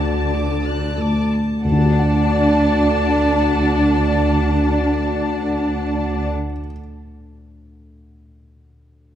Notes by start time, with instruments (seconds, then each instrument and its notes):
Already playing: double bass section D2, felt piano D2 A3 F#4 D5, cello section D3, viola section D4, french horn section D4 F#4, flute section D5, violin section D5 A5
0.02 violin section A5
0.33 felt piano F#4, violin section D6
0.66 violin section F#6
0.98 felt piano A3, violin section D6
1.33 violin section A5
1.63 double bass section D2, felt piano D2, cello section D4, viola section D4, french horn section D4 F#4, flute section D5, violin section D5 F#5 A5
1.72 felt piano D3
1.78 felt piano A3
1.85 felt piano F#4
1.92 felt piano D5
1.99 felt piano F#5